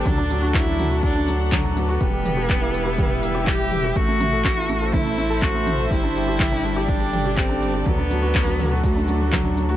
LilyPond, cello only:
\new Staff \with { instrumentName = "Cello" } { \time 4/4 \key d \mixolydian \tempo 4 = 123 d'4 e'4 d'4 r8 b8~ | b2. g'4 | fis'2 e'4 fis'4 | e'2 d'4 c'4 |
b2 a8. g16 fis8. a16 | }